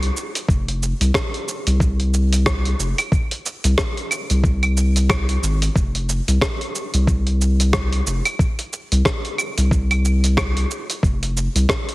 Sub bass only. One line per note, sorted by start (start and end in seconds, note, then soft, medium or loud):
0.00 0.10 C2 medium
0.49 0.93 F1 loud
1.01 1.11 C2 loud
1.67 2.74 C2 medium
2.79 2.94 F1 medium
3.64 3.75 C2 loud
4.30 5.38 C2 medium
5.43 5.69 G#1 loud
5.76 6.21 F1 medium
6.28 6.38 C2 medium
6.94 8.01 C2 medium
8.07 8.21 F1 medium
8.92 9.02 C2 medium
9.58 10.65 C2 medium
11.03 11.48 F1 loud
11.55 11.66 C2 loud